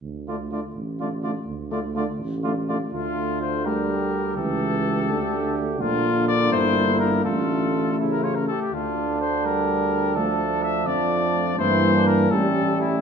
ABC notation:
X:1
M:6/8
L:1/16
Q:3/8=83
K:Dm
V:1 name="Trumpet"
z2 d2 d2 z2 d2 d2 | z2 d2 d2 z2 d2 d2 | F4 c2 B6 | A8- A2 z2 |
F4 d2 c4 B2 | A6 z B ^c B A G | F4 c2 B6 | A4 e2 d6 |
c4 B2 A4 E2 |]
V:2 name="Flugelhorn"
z2 F2 F2 z2 F2 F2 | z2 F2 F2 z2 F2 F2 | F6 G6- | G12 |
F6 E6 | F6 E2 F2 G2 | D12- | D12 |
E3 D3 ^C6 |]
V:3 name="French horn"
z2 A,2 A,2 z2 A,2 A,2 | z2 A,2 A,2 z2 A,2 A,2 | A,6 G,6 | A,12 |
B,12 | A,12- | A,4 z2 G,6 | A,12 |
B,6 A,6 |]
V:4 name="Trombone" clef=bass
z2 D,2 D,2 z2 D,2 D,2 | z2 D,2 D,2 z2 D,2 D,2 | D,12 | E,6 D,6- |
D,12- | D,6 ^C,4 z2 | D,12 | F,12 |
E,6 G,6 |]
V:5 name="Tuba" clef=bass
D,,6 A,,,6 | D,,6 A,,,6 | D,,12 | ^C,,6 D,,6 |
B,,,6 G,,,6 | A,,,8- A,,,2 z2 | D,,12- | D,,6 F,,6 |
G,,6 A,,,6 |]